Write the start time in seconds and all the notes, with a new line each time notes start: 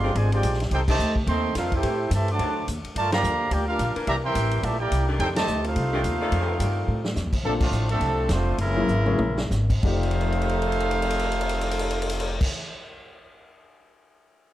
Already playing: G1 F3 G#3 C4 G#4 D5 F5 C6
0.03 D3 G#3 C4 G4
0.15 G#1 D3 F3 G#3 F4 C5 D5 G#5, kick, ride
0.31 G#3 D4 F4 G4 C5 D5 G5, ride
0.43 A#1, kick, hi-hat pedal, ride
0.53 snare
0.60 snare, ride
0.71 C2 C4 D#4 G4 A4 C5 G5, kick, ride
0.88 C3 D#3 A3 D4 G4 C5 D#5 A5, kick, crash
0.99 D2, hi-hat pedal
1.16 kick
1.27 D#2 D#3 A3 C4 A4 D#5 G5 C6, kick, ride
1.55 F2 D#3 A3 C4 D4 D#4 F4 A4 C5 F5, kick, snare, hi-hat pedal, ride
1.72 C4 E4 G4 A4 C5 G5, kick, ride
1.83 A2 E3 A3 C4 G4, kick, ride
2.11 G2 C3 E3 A3 G4 C5 E5 A5, kick, hi-hat pedal, ride
2.28 F#3 A3 D4 C5 F#5 A5 D6, ride
2.39 D2 D#3 C4 D4 A4, kick, ride
2.67 D#2, kick, hi-hat pedal, ride
2.84 muted upright bass stroke, ride
2.95 G2 A3 F4 A#4 D5 A5, kick, ride
3.11 D3 F3 A#3 D4 G4 D5 F5 A#5, snare, ride
3.23 D#2, hi-hat pedal
3.50 D2 A#3 D4 F4 G4 A#4 D5 G5, kick, ride
3.68 A#3 D4 F4 G4 A#4 F5
3.79 A#1, kick, hi-hat pedal, ride
3.96 E3 A#3 D4 A#4, muted upright bass stroke, ride
4.06 C2 E3 G3 A#3 G4 D5 E5 A#5, kick, ride
4.24 E3 G3 C4 A#4 E5 G5 C6
4.35 A1, kick, hi-hat pedal, ride
4.51 ride
4.62 A#1 A#2 E3 A3 G4 D5 E5 A5, kick, ride
4.79 A#3 E4 G4 A#4 D5 G5
4.91 C2, kick, hi-hat pedal, ride
5.08 D#3 A3 D4 G4
5.18 F2 C4 D#4 G4 A4 C5 G5, kick, ride
5.35 C3 D#3 A3 G4 C5 D#5 A5, snare, ride
5.47 D2, hi-hat pedal
5.64 A3 C4 D#4 F4 A4 C5 F5, ride
5.76 C2, kick, ride
5.93 D#3 A3 D4 G4
6.04 D#2, kick, hi-hat pedal, ride
6.21 D#3 A3 A4 D5
6.32 F2, kick, ride
6.60 G2 D#3 A3 G4 D5, kick, hi-hat pedal, ride
6.88 A2
7.05 snare
7.16 F2, snare, hi-hat pedal
7.26 D#2
7.33 C2, kick, crash
7.43 A#1 D3 F3 A3 A#3 C4 D4 A4, kick
7.61 A2 D3 F3 A3 C4 D4 F4, kick, crash
7.71 A1, hi-hat pedal
7.89 D3 F3 A3 C4 D4 A4, ride
8.00 C2, kick, ride
8.29 F1 F3 A3 C4 D4 F4 C5, kick, snare, hi-hat pedal, ride
8.58 F#1 C#3 E3 G#3 A#3 C#4 E4 A#4, kick, ride
8.76 F#3 A#3 C#4 E4 G#4
8.88 G#1, hi-hat pedal
9.06 F#3 A#3 C#4 E4 G#4, mid tom
9.19 A#1, mid tom
9.38 snare
9.50 G#1, snare, hi-hat pedal
9.70 kick, crash
9.82 F1 F2 C3 D#3 F3 A3 D#4 G4 A4 C5 D5 F5, kick, crash
10.03 crash
10.11 ride
10.21 crash
10.32 ride
10.41 crash
10.49 ride
10.62 crash
10.72 ride
10.80 crash
10.91 ride
11.02 crash
11.10 ride
11.19 crash
11.32 ride
11.41 crash
11.49 ride
11.61 crash
11.71 ride
11.79 crash
11.90 ride
12.02 crash
12.09 ride
12.20 crash
12.41 kick, crash